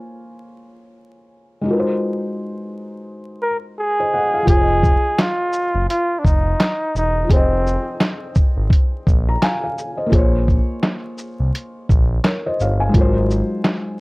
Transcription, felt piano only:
Already playing: A#3 F4 G#4 C5 C#5 F5 G#5
1.61 G#3 D#4
1.66 F4 F#4
1.70 A#4 B4
1.79 C5
4.00 C5 D#5
4.14 D#5 F#5
4.34 F5
4.43 F3 F4
4.49 G#4 C5
4.55 C#5
4.61 D#5
7.25 F3 F4
7.30 G#4 C5
7.36 D#5
9.29 A#5
9.43 F5 G#5
9.64 F5
9.97 C5 D#5
10.06 A#3 F4
10.12 G#4 C5
10.18 C#5
12.24 A#4 C#5
12.46 C5 D#5
12.61 C#5 F5
12.80 F5 G#5
12.89 G#3 D#4
12.94 F#3 F4
12.98 A#4 C5

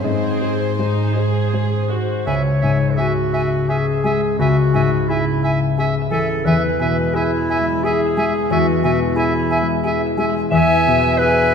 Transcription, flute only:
2.27 G#5
2.63 G#5
2.99 G#5
3.33 G#5
3.68 G#5
4.04 G#5
4.39 G#5
4.73 G#5
5.10 G#5
5.44 G#5
5.77 G#5
6.10 G#5
6.46 G#5
6.79 G#5
7.15 G#5
7.50 G#5
7.84 G#5
8.17 G#5
8.50 G#5
8.83 G#5
9.15 G#5
9.50 G#5
9.83 G#5
10.17 G#5
10.50 G#5
11.19 G#5

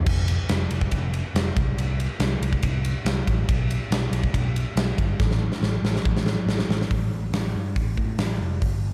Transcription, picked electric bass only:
0.06 F1
0.50 F1
0.71 F1
0.92 F1
1.35 F1
1.57 C2
1.77 C2
2.20 C2
2.41 C2
2.64 C2
3.05 C2
3.28 A1
3.49 B1
3.91 B1
4.11 B1
4.34 B1
4.76 B1
4.98 G1
5.20 A1
5.61 A1
5.83 A1
6.05 A1
6.46 A1
6.69 A1
6.90 A1
7.12 A1
7.32 A1
7.55 G2
7.76 A1
7.97 A2
8.18 A1
8.40 F1
8.62 G1
8.82 G1

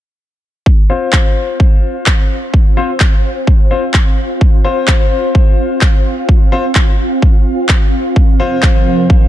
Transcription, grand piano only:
0.90 C4 F4 C5
2.77 C4 F4 C5
3.71 C4 F4 C5
4.65 C4 F4 C5
6.52 C4 F4 C5
8.40 C4 F4 C5

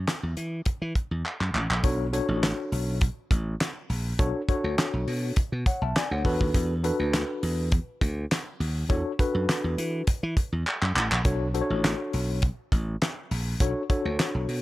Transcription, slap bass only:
0.23 E2
0.37 E3
0.66 muted slap bass stroke
0.82 E3
1.11 E2
1.40 F#2
1.54 A1
1.70 A#1
1.84 B1
2.29 A1
2.72 B1
3.31 A1
3.90 A#1
4.19 B1
4.64 D2
4.93 B1
5.07 B2
5.37 muted slap bass stroke
5.52 B2
5.82 B1
6.11 D2
6.25 E2
6.41 D#2
6.54 E2
6.99 D2
7.43 E2
8.01 D2
8.60 D#2
8.90 E2
9.35 F#2
9.64 E2
9.78 E3
10.23 E3
10.52 E2
10.82 F#2
10.96 A1
11.11 A#1
11.25 B1
11.70 A1
12.14 B1
12.72 A1
13.31 A#1
13.60 B1
14.05 D2
14.35 B1
14.48 B2

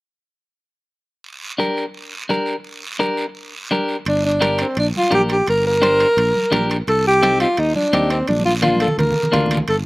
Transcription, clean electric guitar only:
1.58 D4 G4 A#4
2.29 D4 G4 A#4
2.99 D4 G4 A#4
3.71 D4 G4 A#4
4.41 D4 G4 A#4
5.11 D4 G4 A#4
5.82 D4 G4 C5
6.52 D4 G4 A#4
7.23 C4 D#4 G4
7.93 C4 D#4 G4
8.62 A#3 D4 F4
9.32 A#3 D4 F4

